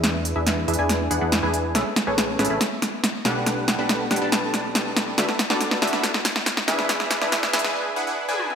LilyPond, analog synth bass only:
\new Staff \with { instrumentName = "Analog synth bass" } { \clef bass \time 4/4 \key e \mixolydian \tempo 4 = 140 e,8. e,8. e,16 e,8. e,16 e,8 e,8. | a,,16 r8 a,,8. a,,16 a,,16 r4. b,,8~ | b,,8. b,,8. b,,16 b,,2~ b,,16 | d,16 r8 d,8. d,16 d,16 r4. e,8~ |
e,8. e,8. e,16 e,16 r2 | }